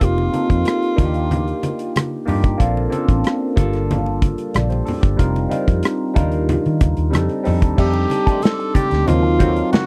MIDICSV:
0, 0, Header, 1, 9, 480
1, 0, Start_track
1, 0, Tempo, 647459
1, 9, Time_signature, 4, 2, 24, 8
1, 7312, End_track
2, 0, Start_track
2, 0, Title_t, "Glockenspiel"
2, 0, Program_c, 0, 9
2, 6012, Note_on_c, 0, 81, 62
2, 6165, Note_on_c, 0, 84, 51
2, 6326, Note_on_c, 0, 86, 46
2, 6742, Note_off_c, 0, 81, 0
2, 6878, Note_off_c, 0, 84, 0
2, 7018, Note_off_c, 0, 86, 0
2, 7312, End_track
3, 0, Start_track
3, 0, Title_t, "Tenor saxophone"
3, 0, Program_c, 1, 66
3, 29, Note_on_c, 1, 65, 79
3, 1699, Note_off_c, 1, 65, 0
3, 5781, Note_on_c, 1, 67, 89
3, 6249, Note_on_c, 1, 69, 93
3, 6261, Note_off_c, 1, 67, 0
3, 6483, Note_on_c, 1, 67, 87
3, 6494, Note_off_c, 1, 69, 0
3, 6727, Note_on_c, 1, 65, 92
3, 6738, Note_off_c, 1, 67, 0
3, 7205, Note_off_c, 1, 65, 0
3, 7209, Note_on_c, 1, 66, 80
3, 7312, Note_off_c, 1, 66, 0
3, 7312, End_track
4, 0, Start_track
4, 0, Title_t, "Tine electric piano"
4, 0, Program_c, 2, 4
4, 0, Control_c, 2, 64, 127
4, 4, Note_on_c, 2, 58, 60
4, 5, Note_on_c, 2, 60, 55
4, 13, Note_on_c, 2, 63, 60
4, 16, Note_on_c, 2, 65, 54
4, 19, Control_c, 2, 64, 0
4, 20, Note_on_c, 2, 67, 69
4, 169, Control_c, 2, 64, 127
4, 216, Note_off_c, 2, 58, 0
4, 217, Note_off_c, 2, 60, 0
4, 221, Note_off_c, 2, 63, 0
4, 223, Note_off_c, 2, 65, 0
4, 224, Note_off_c, 2, 67, 0
4, 240, Note_on_c, 2, 58, 58
4, 242, Note_on_c, 2, 60, 53
4, 249, Note_on_c, 2, 63, 55
4, 253, Note_on_c, 2, 65, 50
4, 259, Note_on_c, 2, 69, 66
4, 705, Note_off_c, 2, 58, 0
4, 711, Note_off_c, 2, 63, 0
4, 714, Note_on_c, 2, 58, 84
4, 715, Note_on_c, 2, 62, 74
4, 718, Note_off_c, 2, 65, 0
4, 720, Note_on_c, 2, 63, 72
4, 725, Note_off_c, 2, 60, 0
4, 727, Note_on_c, 2, 65, 70
4, 728, Note_on_c, 2, 66, 75
4, 734, Note_off_c, 2, 69, 0
4, 738, Control_c, 2, 64, 0
4, 777, Note_off_c, 2, 66, 0
4, 777, Note_on_c, 2, 67, 88
4, 882, Control_c, 2, 64, 127
4, 1561, Note_off_c, 2, 58, 0
4, 1562, Note_off_c, 2, 62, 0
4, 1565, Note_off_c, 2, 63, 0
4, 1568, Note_off_c, 2, 65, 0
4, 1593, Note_off_c, 2, 67, 0
4, 1674, Note_on_c, 2, 58, 77
4, 1679, Note_on_c, 2, 62, 71
4, 1681, Note_on_c, 2, 63, 70
4, 1689, Note_on_c, 2, 65, 68
4, 1692, Note_on_c, 2, 67, 85
4, 1891, Note_off_c, 2, 58, 0
4, 1894, Note_off_c, 2, 62, 0
4, 1895, Note_off_c, 2, 63, 0
4, 1899, Note_off_c, 2, 65, 0
4, 1900, Note_off_c, 2, 67, 0
4, 1911, Note_on_c, 2, 58, 75
4, 1916, Note_on_c, 2, 60, 68
4, 1920, Note_on_c, 2, 62, 72
4, 1926, Note_on_c, 2, 65, 73
4, 1931, Note_on_c, 2, 69, 85
4, 1939, Control_c, 2, 64, 0
4, 2046, Control_c, 2, 64, 127
4, 2130, Note_off_c, 2, 58, 0
4, 2133, Note_off_c, 2, 60, 0
4, 2135, Note_off_c, 2, 62, 0
4, 2138, Note_off_c, 2, 65, 0
4, 2140, Note_off_c, 2, 69, 0
4, 2149, Note_on_c, 2, 58, 70
4, 2155, Note_on_c, 2, 60, 63
4, 2160, Note_on_c, 2, 61, 53
4, 2165, Note_on_c, 2, 65, 64
4, 2168, Note_on_c, 2, 69, 77
4, 2209, Note_on_c, 2, 62, 64
4, 2213, Note_off_c, 2, 61, 0
4, 2630, Note_off_c, 2, 58, 0
4, 2633, Note_off_c, 2, 62, 0
4, 2635, Note_on_c, 2, 55, 80
4, 2638, Note_off_c, 2, 65, 0
4, 2639, Note_on_c, 2, 58, 79
4, 2642, Note_off_c, 2, 60, 0
4, 2642, Note_off_c, 2, 69, 0
4, 2642, Note_on_c, 2, 62, 75
4, 2647, Note_on_c, 2, 65, 78
4, 2650, Note_on_c, 2, 69, 96
4, 2659, Control_c, 2, 64, 0
4, 2770, Control_c, 2, 64, 127
4, 3364, Note_off_c, 2, 69, 0
4, 3366, Note_off_c, 2, 62, 0
4, 3368, Note_off_c, 2, 65, 0
4, 3370, Note_on_c, 2, 74, 56
4, 3373, Note_on_c, 2, 69, 45
4, 3479, Note_on_c, 2, 72, 60
4, 3482, Note_off_c, 2, 55, 0
4, 3483, Note_off_c, 2, 74, 0
4, 3484, Note_off_c, 2, 58, 0
4, 3485, Note_off_c, 2, 69, 0
4, 3488, Note_on_c, 2, 67, 51
4, 3598, Note_off_c, 2, 72, 0
4, 3599, Note_on_c, 2, 69, 61
4, 3602, Note_off_c, 2, 67, 0
4, 3605, Note_on_c, 2, 62, 54
4, 3709, Note_off_c, 2, 62, 0
4, 3713, Note_on_c, 2, 67, 58
4, 3718, Note_off_c, 2, 69, 0
4, 3718, Note_on_c, 2, 62, 51
4, 3828, Note_on_c, 2, 55, 75
4, 3835, Note_on_c, 2, 60, 71
4, 3836, Note_on_c, 2, 63, 69
4, 3845, Note_on_c, 2, 65, 70
4, 3847, Note_on_c, 2, 70, 89
4, 3859, Control_c, 2, 64, 0
4, 3948, Note_off_c, 2, 67, 0
4, 3951, Note_off_c, 2, 62, 0
4, 3968, Control_c, 2, 64, 127
4, 4049, Note_off_c, 2, 55, 0
4, 4052, Note_off_c, 2, 60, 0
4, 4053, Note_off_c, 2, 63, 0
4, 4057, Note_off_c, 2, 65, 0
4, 4058, Note_off_c, 2, 70, 0
4, 4071, Note_on_c, 2, 55, 65
4, 4077, Note_on_c, 2, 60, 63
4, 4081, Note_on_c, 2, 63, 64
4, 4084, Note_on_c, 2, 65, 66
4, 4092, Note_on_c, 2, 70, 75
4, 4543, Note_off_c, 2, 55, 0
4, 4552, Note_off_c, 2, 63, 0
4, 4552, Note_on_c, 2, 55, 82
4, 4557, Note_on_c, 2, 62, 73
4, 4559, Note_off_c, 2, 65, 0
4, 4561, Note_on_c, 2, 63, 78
4, 4562, Note_off_c, 2, 70, 0
4, 4563, Note_off_c, 2, 60, 0
4, 4568, Note_on_c, 2, 65, 79
4, 4570, Note_on_c, 2, 70, 96
4, 4578, Control_c, 2, 64, 0
4, 4702, Control_c, 2, 64, 127
4, 5191, Note_off_c, 2, 55, 0
4, 5193, Note_off_c, 2, 62, 0
4, 5195, Note_off_c, 2, 63, 0
4, 5199, Note_off_c, 2, 65, 0
4, 5200, Note_off_c, 2, 70, 0
4, 5265, Note_on_c, 2, 55, 80
4, 5272, Note_on_c, 2, 60, 71
4, 5279, Note_on_c, 2, 62, 72
4, 5281, Note_on_c, 2, 63, 72
4, 5285, Note_on_c, 2, 69, 85
4, 5299, Control_c, 2, 64, 0
4, 5406, Control_c, 2, 64, 127
4, 5487, Note_off_c, 2, 55, 0
4, 5490, Note_off_c, 2, 60, 0
4, 5494, Note_off_c, 2, 62, 0
4, 5495, Note_off_c, 2, 63, 0
4, 5497, Note_off_c, 2, 69, 0
4, 5511, Note_on_c, 2, 55, 76
4, 5514, Note_on_c, 2, 60, 64
4, 5521, Note_on_c, 2, 62, 70
4, 5524, Note_on_c, 2, 63, 68
4, 5528, Note_on_c, 2, 69, 81
4, 5730, Note_off_c, 2, 55, 0
4, 5732, Note_off_c, 2, 60, 0
4, 5735, Note_off_c, 2, 62, 0
4, 5736, Note_off_c, 2, 63, 0
4, 5739, Note_off_c, 2, 69, 0
4, 5753, Note_on_c, 2, 55, 61
4, 5756, Note_on_c, 2, 60, 59
4, 5760, Note_on_c, 2, 62, 56
4, 5763, Note_on_c, 2, 63, 58
4, 5771, Note_on_c, 2, 69, 71
4, 5780, Control_c, 2, 64, 0
4, 5915, Control_c, 2, 64, 127
4, 6601, Note_off_c, 2, 55, 0
4, 6603, Note_off_c, 2, 60, 0
4, 6605, Note_off_c, 2, 62, 0
4, 6606, Note_off_c, 2, 63, 0
4, 6610, Note_off_c, 2, 69, 0
4, 6717, Note_on_c, 2, 54, 66
4, 6721, Note_on_c, 2, 60, 61
4, 6728, Note_on_c, 2, 63, 63
4, 6733, Note_on_c, 2, 65, 62
4, 6736, Note_on_c, 2, 70, 75
4, 6737, Control_c, 2, 64, 0
4, 6852, Control_c, 2, 64, 127
4, 6933, Note_off_c, 2, 54, 0
4, 6935, Note_off_c, 2, 60, 0
4, 6939, Note_off_c, 2, 63, 0
4, 6941, Note_off_c, 2, 65, 0
4, 6943, Note_off_c, 2, 70, 0
4, 6963, Note_on_c, 2, 54, 68
4, 6970, Note_on_c, 2, 60, 62
4, 6974, Note_on_c, 2, 63, 62
4, 6980, Note_on_c, 2, 77, 63
4, 6981, Note_on_c, 2, 69, 61
4, 7023, Note_off_c, 2, 69, 0
4, 7034, Note_on_c, 2, 70, 74
4, 7312, Note_off_c, 2, 54, 0
4, 7312, Note_off_c, 2, 60, 0
4, 7312, Note_off_c, 2, 63, 0
4, 7312, Note_off_c, 2, 70, 0
4, 7312, Note_off_c, 2, 77, 0
4, 7312, End_track
5, 0, Start_track
5, 0, Title_t, "Clean electric guitar"
5, 0, Program_c, 3, 27
5, 5763, Note_on_c, 3, 51, 70
5, 5768, Note_on_c, 3, 57, 74
5, 5773, Note_on_c, 3, 62, 68
5, 5777, Note_on_c, 3, 67, 70
5, 5881, Note_off_c, 3, 67, 0
5, 5886, Note_off_c, 3, 62, 0
5, 5890, Note_off_c, 3, 57, 0
5, 5892, Note_off_c, 3, 51, 0
5, 6126, Note_on_c, 3, 69, 49
5, 6130, Note_on_c, 3, 62, 44
5, 6134, Note_on_c, 3, 57, 41
5, 6137, Note_on_c, 3, 51, 35
5, 6226, Note_off_c, 3, 69, 0
5, 6228, Note_off_c, 3, 62, 0
5, 6230, Note_off_c, 3, 57, 0
5, 6231, Note_off_c, 3, 51, 0
5, 6483, Note_on_c, 3, 51, 69
5, 6490, Note_on_c, 3, 57, 67
5, 6494, Note_on_c, 3, 62, 72
5, 6497, Note_on_c, 3, 67, 77
5, 6594, Note_off_c, 3, 67, 0
5, 6598, Note_off_c, 3, 62, 0
5, 6605, Note_off_c, 3, 57, 0
5, 6612, Note_off_c, 3, 51, 0
5, 6964, Note_on_c, 3, 51, 69
5, 6969, Note_on_c, 3, 58, 72
5, 6973, Note_on_c, 3, 60, 77
5, 6978, Note_on_c, 3, 66, 77
5, 7076, Note_off_c, 3, 66, 0
5, 7078, Note_off_c, 3, 60, 0
5, 7083, Note_off_c, 3, 58, 0
5, 7092, Note_off_c, 3, 51, 0
5, 7312, End_track
6, 0, Start_track
6, 0, Title_t, "Fingered electric bass"
6, 0, Program_c, 4, 33
6, 12, Note_on_c, 4, 29, 80
6, 206, Note_off_c, 4, 29, 0
6, 371, Note_on_c, 4, 41, 80
6, 468, Note_off_c, 4, 41, 0
6, 734, Note_on_c, 4, 39, 87
6, 1122, Note_off_c, 4, 39, 0
6, 1693, Note_on_c, 4, 43, 71
6, 1886, Note_off_c, 4, 43, 0
6, 1929, Note_on_c, 4, 34, 81
6, 2124, Note_off_c, 4, 34, 0
6, 2291, Note_on_c, 4, 33, 81
6, 2388, Note_off_c, 4, 33, 0
6, 2650, Note_on_c, 4, 31, 81
6, 3220, Note_off_c, 4, 31, 0
6, 3375, Note_on_c, 4, 34, 84
6, 3568, Note_off_c, 4, 34, 0
6, 3733, Note_on_c, 4, 31, 87
6, 3829, Note_off_c, 4, 31, 0
6, 3850, Note_on_c, 4, 29, 86
6, 4044, Note_off_c, 4, 29, 0
6, 4214, Note_on_c, 4, 41, 81
6, 4309, Note_off_c, 4, 41, 0
6, 4572, Note_on_c, 4, 39, 76
6, 4864, Note_off_c, 4, 39, 0
6, 4940, Note_on_c, 4, 51, 80
6, 5033, Note_off_c, 4, 51, 0
6, 5051, Note_on_c, 4, 39, 67
6, 5147, Note_off_c, 4, 39, 0
6, 5172, Note_on_c, 4, 39, 74
6, 5269, Note_off_c, 4, 39, 0
6, 5299, Note_on_c, 4, 41, 78
6, 5392, Note_off_c, 4, 41, 0
6, 5539, Note_on_c, 4, 41, 74
6, 5653, Note_off_c, 4, 41, 0
6, 5653, Note_on_c, 4, 39, 71
6, 5749, Note_off_c, 4, 39, 0
6, 5771, Note_on_c, 4, 41, 90
6, 5965, Note_off_c, 4, 41, 0
6, 6613, Note_on_c, 4, 38, 82
6, 6709, Note_off_c, 4, 38, 0
6, 6737, Note_on_c, 4, 39, 93
6, 7124, Note_off_c, 4, 39, 0
6, 7312, End_track
7, 0, Start_track
7, 0, Title_t, "Muted clean electric guitar strokes"
7, 5890, Note_on_c, 9, 29, 41
7, 5964, Note_off_c, 9, 29, 0
7, 6010, Note_on_c, 9, 29, 41
7, 6085, Note_off_c, 9, 29, 0
7, 6370, Note_on_c, 9, 29, 34
7, 6444, Note_off_c, 9, 29, 0
7, 6603, Note_on_c, 9, 29, 31
7, 6677, Note_off_c, 9, 29, 0
7, 6842, Note_on_c, 9, 29, 45
7, 6916, Note_off_c, 9, 29, 0
7, 7085, Note_on_c, 9, 29, 37
7, 7159, Note_off_c, 9, 29, 0
7, 7205, Note_on_c, 9, 29, 30
7, 7279, Note_off_c, 9, 29, 0
7, 7312, End_track
8, 0, Start_track
8, 0, Title_t, "Muted fingered electric bass strokes"
8, 6490, Note_on_c, 9, 29, 42
8, 6565, Note_off_c, 9, 29, 0
8, 7312, End_track
9, 0, Start_track
9, 0, Title_t, "Drums"
9, 8, Note_on_c, 9, 42, 80
9, 9, Note_on_c, 9, 36, 86
9, 15, Note_on_c, 9, 62, 31
9, 82, Note_off_c, 9, 42, 0
9, 83, Note_off_c, 9, 36, 0
9, 89, Note_off_c, 9, 62, 0
9, 134, Note_on_c, 9, 62, 30
9, 208, Note_off_c, 9, 62, 0
9, 249, Note_on_c, 9, 42, 68
9, 251, Note_on_c, 9, 63, 42
9, 323, Note_off_c, 9, 42, 0
9, 325, Note_off_c, 9, 63, 0
9, 369, Note_on_c, 9, 36, 70
9, 373, Note_on_c, 9, 42, 34
9, 444, Note_off_c, 9, 36, 0
9, 448, Note_off_c, 9, 42, 0
9, 484, Note_on_c, 9, 42, 78
9, 489, Note_on_c, 9, 62, 29
9, 503, Note_on_c, 9, 37, 97
9, 558, Note_off_c, 9, 42, 0
9, 563, Note_off_c, 9, 62, 0
9, 577, Note_off_c, 9, 37, 0
9, 611, Note_on_c, 9, 42, 30
9, 685, Note_off_c, 9, 42, 0
9, 729, Note_on_c, 9, 36, 100
9, 730, Note_on_c, 9, 63, 59
9, 732, Note_on_c, 9, 42, 66
9, 803, Note_off_c, 9, 36, 0
9, 804, Note_off_c, 9, 63, 0
9, 806, Note_off_c, 9, 42, 0
9, 847, Note_on_c, 9, 42, 39
9, 921, Note_off_c, 9, 42, 0
9, 972, Note_on_c, 9, 63, 70
9, 972, Note_on_c, 9, 64, 70
9, 977, Note_on_c, 9, 42, 70
9, 1046, Note_off_c, 9, 63, 0
9, 1046, Note_off_c, 9, 64, 0
9, 1051, Note_off_c, 9, 42, 0
9, 1095, Note_on_c, 9, 42, 29
9, 1169, Note_off_c, 9, 42, 0
9, 1210, Note_on_c, 9, 42, 73
9, 1210, Note_on_c, 9, 63, 60
9, 1284, Note_off_c, 9, 42, 0
9, 1284, Note_off_c, 9, 63, 0
9, 1328, Note_on_c, 9, 42, 45
9, 1402, Note_off_c, 9, 42, 0
9, 1452, Note_on_c, 9, 42, 79
9, 1454, Note_on_c, 9, 62, 28
9, 1454, Note_on_c, 9, 63, 61
9, 1462, Note_on_c, 9, 37, 96
9, 1526, Note_off_c, 9, 42, 0
9, 1528, Note_off_c, 9, 62, 0
9, 1528, Note_off_c, 9, 63, 0
9, 1536, Note_off_c, 9, 37, 0
9, 1686, Note_on_c, 9, 46, 52
9, 1698, Note_on_c, 9, 64, 62
9, 1760, Note_off_c, 9, 46, 0
9, 1772, Note_off_c, 9, 64, 0
9, 1808, Note_on_c, 9, 36, 86
9, 1809, Note_on_c, 9, 42, 50
9, 1882, Note_off_c, 9, 36, 0
9, 1883, Note_off_c, 9, 42, 0
9, 1927, Note_on_c, 9, 36, 90
9, 1930, Note_on_c, 9, 42, 76
9, 2001, Note_off_c, 9, 36, 0
9, 2004, Note_off_c, 9, 42, 0
9, 2056, Note_on_c, 9, 62, 30
9, 2130, Note_off_c, 9, 62, 0
9, 2168, Note_on_c, 9, 42, 73
9, 2170, Note_on_c, 9, 63, 42
9, 2242, Note_off_c, 9, 42, 0
9, 2244, Note_off_c, 9, 63, 0
9, 2287, Note_on_c, 9, 36, 80
9, 2293, Note_on_c, 9, 42, 37
9, 2361, Note_off_c, 9, 36, 0
9, 2367, Note_off_c, 9, 42, 0
9, 2404, Note_on_c, 9, 42, 73
9, 2424, Note_on_c, 9, 37, 98
9, 2479, Note_off_c, 9, 42, 0
9, 2498, Note_off_c, 9, 37, 0
9, 2647, Note_on_c, 9, 36, 99
9, 2650, Note_on_c, 9, 63, 63
9, 2653, Note_on_c, 9, 42, 67
9, 2722, Note_off_c, 9, 36, 0
9, 2724, Note_off_c, 9, 63, 0
9, 2727, Note_off_c, 9, 42, 0
9, 2767, Note_on_c, 9, 42, 39
9, 2782, Note_on_c, 9, 37, 33
9, 2842, Note_off_c, 9, 42, 0
9, 2856, Note_off_c, 9, 37, 0
9, 2896, Note_on_c, 9, 42, 68
9, 2897, Note_on_c, 9, 62, 36
9, 2897, Note_on_c, 9, 63, 70
9, 2897, Note_on_c, 9, 64, 69
9, 2970, Note_off_c, 9, 42, 0
9, 2972, Note_off_c, 9, 62, 0
9, 2972, Note_off_c, 9, 63, 0
9, 2972, Note_off_c, 9, 64, 0
9, 3011, Note_on_c, 9, 62, 28
9, 3085, Note_off_c, 9, 62, 0
9, 3129, Note_on_c, 9, 36, 84
9, 3130, Note_on_c, 9, 42, 71
9, 3132, Note_on_c, 9, 63, 56
9, 3203, Note_off_c, 9, 36, 0
9, 3204, Note_off_c, 9, 42, 0
9, 3206, Note_off_c, 9, 63, 0
9, 3248, Note_on_c, 9, 42, 44
9, 3322, Note_off_c, 9, 42, 0
9, 3369, Note_on_c, 9, 42, 78
9, 3375, Note_on_c, 9, 63, 58
9, 3379, Note_on_c, 9, 37, 96
9, 3443, Note_off_c, 9, 42, 0
9, 3449, Note_off_c, 9, 63, 0
9, 3453, Note_off_c, 9, 37, 0
9, 3485, Note_on_c, 9, 42, 31
9, 3502, Note_on_c, 9, 62, 28
9, 3559, Note_off_c, 9, 42, 0
9, 3576, Note_off_c, 9, 62, 0
9, 3607, Note_on_c, 9, 46, 50
9, 3621, Note_on_c, 9, 64, 64
9, 3681, Note_off_c, 9, 46, 0
9, 3695, Note_off_c, 9, 64, 0
9, 3729, Note_on_c, 9, 36, 86
9, 3733, Note_on_c, 9, 42, 47
9, 3803, Note_off_c, 9, 36, 0
9, 3807, Note_off_c, 9, 42, 0
9, 3849, Note_on_c, 9, 36, 90
9, 3851, Note_on_c, 9, 42, 72
9, 3857, Note_on_c, 9, 62, 28
9, 3923, Note_off_c, 9, 36, 0
9, 3925, Note_off_c, 9, 42, 0
9, 3931, Note_off_c, 9, 62, 0
9, 3973, Note_on_c, 9, 42, 27
9, 3975, Note_on_c, 9, 62, 30
9, 4047, Note_off_c, 9, 42, 0
9, 4050, Note_off_c, 9, 62, 0
9, 4088, Note_on_c, 9, 42, 71
9, 4089, Note_on_c, 9, 63, 43
9, 4162, Note_off_c, 9, 42, 0
9, 4163, Note_off_c, 9, 63, 0
9, 4209, Note_on_c, 9, 36, 78
9, 4212, Note_on_c, 9, 42, 37
9, 4283, Note_off_c, 9, 36, 0
9, 4286, Note_off_c, 9, 42, 0
9, 4320, Note_on_c, 9, 42, 76
9, 4340, Note_on_c, 9, 37, 94
9, 4395, Note_off_c, 9, 42, 0
9, 4414, Note_off_c, 9, 37, 0
9, 4569, Note_on_c, 9, 36, 95
9, 4569, Note_on_c, 9, 42, 65
9, 4572, Note_on_c, 9, 63, 57
9, 4572, Note_on_c, 9, 64, 58
9, 4643, Note_off_c, 9, 36, 0
9, 4643, Note_off_c, 9, 42, 0
9, 4647, Note_off_c, 9, 63, 0
9, 4647, Note_off_c, 9, 64, 0
9, 4683, Note_on_c, 9, 42, 40
9, 4757, Note_off_c, 9, 42, 0
9, 4811, Note_on_c, 9, 42, 68
9, 4811, Note_on_c, 9, 63, 74
9, 4811, Note_on_c, 9, 64, 71
9, 4885, Note_off_c, 9, 42, 0
9, 4886, Note_off_c, 9, 63, 0
9, 4886, Note_off_c, 9, 64, 0
9, 4935, Note_on_c, 9, 42, 28
9, 5009, Note_off_c, 9, 42, 0
9, 5046, Note_on_c, 9, 42, 66
9, 5049, Note_on_c, 9, 36, 82
9, 5051, Note_on_c, 9, 63, 56
9, 5120, Note_off_c, 9, 42, 0
9, 5123, Note_off_c, 9, 36, 0
9, 5125, Note_off_c, 9, 63, 0
9, 5165, Note_on_c, 9, 42, 43
9, 5240, Note_off_c, 9, 42, 0
9, 5289, Note_on_c, 9, 62, 27
9, 5289, Note_on_c, 9, 63, 64
9, 5290, Note_on_c, 9, 42, 83
9, 5300, Note_on_c, 9, 37, 97
9, 5363, Note_off_c, 9, 62, 0
9, 5363, Note_off_c, 9, 63, 0
9, 5364, Note_off_c, 9, 42, 0
9, 5374, Note_off_c, 9, 37, 0
9, 5407, Note_on_c, 9, 42, 30
9, 5482, Note_off_c, 9, 42, 0
9, 5525, Note_on_c, 9, 46, 52
9, 5536, Note_on_c, 9, 37, 31
9, 5536, Note_on_c, 9, 64, 61
9, 5599, Note_off_c, 9, 46, 0
9, 5610, Note_off_c, 9, 37, 0
9, 5610, Note_off_c, 9, 64, 0
9, 5650, Note_on_c, 9, 36, 87
9, 5651, Note_on_c, 9, 42, 50
9, 5724, Note_off_c, 9, 36, 0
9, 5726, Note_off_c, 9, 42, 0
9, 5769, Note_on_c, 9, 36, 94
9, 5771, Note_on_c, 9, 49, 82
9, 5844, Note_off_c, 9, 36, 0
9, 5845, Note_off_c, 9, 49, 0
9, 5883, Note_on_c, 9, 62, 31
9, 5957, Note_off_c, 9, 62, 0
9, 6005, Note_on_c, 9, 63, 43
9, 6013, Note_on_c, 9, 42, 77
9, 6079, Note_off_c, 9, 63, 0
9, 6088, Note_off_c, 9, 42, 0
9, 6130, Note_on_c, 9, 36, 83
9, 6139, Note_on_c, 9, 42, 37
9, 6205, Note_off_c, 9, 36, 0
9, 6213, Note_off_c, 9, 42, 0
9, 6244, Note_on_c, 9, 62, 29
9, 6248, Note_on_c, 9, 42, 78
9, 6267, Note_on_c, 9, 38, 97
9, 6318, Note_off_c, 9, 62, 0
9, 6322, Note_off_c, 9, 42, 0
9, 6341, Note_off_c, 9, 38, 0
9, 6375, Note_on_c, 9, 42, 31
9, 6449, Note_off_c, 9, 42, 0
9, 6486, Note_on_c, 9, 63, 64
9, 6487, Note_on_c, 9, 36, 83
9, 6494, Note_on_c, 9, 42, 65
9, 6560, Note_off_c, 9, 63, 0
9, 6561, Note_off_c, 9, 36, 0
9, 6568, Note_off_c, 9, 42, 0
9, 6606, Note_on_c, 9, 42, 41
9, 6620, Note_on_c, 9, 38, 35
9, 6680, Note_off_c, 9, 42, 0
9, 6695, Note_off_c, 9, 38, 0
9, 6729, Note_on_c, 9, 63, 79
9, 6729, Note_on_c, 9, 64, 78
9, 6735, Note_on_c, 9, 42, 73
9, 6803, Note_off_c, 9, 63, 0
9, 6803, Note_off_c, 9, 64, 0
9, 6809, Note_off_c, 9, 42, 0
9, 6968, Note_on_c, 9, 63, 59
9, 6970, Note_on_c, 9, 36, 84
9, 6970, Note_on_c, 9, 42, 72
9, 7042, Note_off_c, 9, 63, 0
9, 7044, Note_off_c, 9, 36, 0
9, 7044, Note_off_c, 9, 42, 0
9, 7090, Note_on_c, 9, 42, 46
9, 7164, Note_off_c, 9, 42, 0
9, 7213, Note_on_c, 9, 42, 83
9, 7214, Note_on_c, 9, 63, 62
9, 7223, Note_on_c, 9, 38, 108
9, 7287, Note_off_c, 9, 42, 0
9, 7288, Note_off_c, 9, 63, 0
9, 7297, Note_off_c, 9, 38, 0
9, 7312, End_track
0, 0, End_of_file